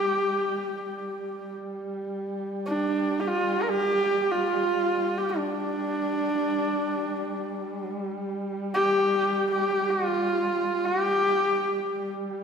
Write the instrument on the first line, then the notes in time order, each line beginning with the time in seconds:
horsehead fiddle
Already playing: G3 G4
0.80 G3
2.66 D4
3.19 G4
3.27 F4
3.62 A#4
3.70 G4
4.32 F4
5.18 G4
5.37 D4
6.37 G3
8.74 G4
9.51 G4
9.90 F4
10.85 G4
11.90 G3